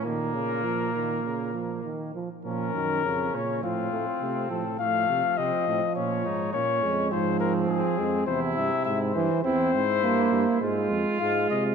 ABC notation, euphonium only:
X:1
M:4/4
L:1/8
Q:1/4=102
K:Bbm
V:1 name="Euphonium" clef=bass
E, D, F, E, D, F, E, F, | F, E, D,2 F, =A, A, F, | F,6 B, A, | F,3 A, C,3 =E, |
C z B,2 A,2 A,2 |]